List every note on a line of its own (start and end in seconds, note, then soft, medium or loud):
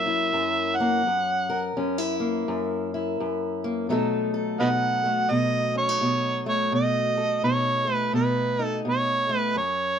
0.00 0.32 F#2 medium
0.00 1.70 F#3 medium
0.00 0.77 A#3 soft
0.00 1.01 A#4 medium
0.00 0.77 E5 medium
0.06 1.01 E4 medium
0.33 1.04 F#2 medium
0.76 1.74 F#5 loud
0.80 1.02 A#3 medium
1.07 1.76 F#2 medium
1.50 3.86 A#4 medium
1.77 2.47 F#2 medium
1.77 1.98 C#4 soft
1.98 2.91 E4 soft
2.20 3.61 A#3 soft
2.48 3.18 F#2 medium
2.94 3.87 E4 soft
3.20 3.90 F#2 medium
3.64 3.86 A#3 medium
3.89 4.59 B2 medium
3.89 7.40 F#3 medium
3.89 5.05 A3 medium
3.89 4.60 D#4 medium
3.89 4.33 A4 medium
4.34 6.70 A4 medium
4.60 5.30 B2 medium
4.60 5.75 D#4 medium
4.60 4.68 B4 medium
4.60 4.69 D#5 medium
4.60 5.32 F#5 medium
5.06 6.45 A3 medium
5.30 6.00 B2 medium
5.30 5.74 D#5 medium
5.75 5.89 C#4 soft
5.75 6.43 C#5 medium
5.89 6.73 D#4 soft
6.01 6.71 B2 medium
6.46 7.86 A3 medium
6.46 6.72 C#5 medium
6.72 7.42 B2 medium
6.72 7.41 D#5 loud
7.17 9.54 A4 medium
7.43 8.12 B2 medium
7.43 8.58 D#4 medium
7.43 7.95 C#5 medium
7.87 9.28 A3 medium
7.95 8.11 B4 medium
8.13 8.84 B2 medium
8.13 8.65 B4 medium
8.59 9.54 D#4 medium
8.65 8.82 A4 medium
8.85 9.56 B2 medium
8.89 9.38 C#5 medium
9.29 9.56 A3 medium
9.38 9.54 B4 medium
9.55 9.99 F#2 medium
9.55 9.99 C#5 medium